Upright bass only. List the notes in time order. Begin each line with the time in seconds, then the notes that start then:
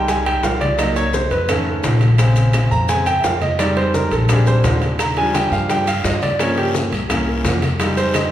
Already playing: C2
0.43 C2
1.30 F2
1.83 A#1
2.71 F2
3.24 F2
4.11 A#1
4.64 D#2
5.51 G2
6.04 G2
6.92 C2
7.44 F2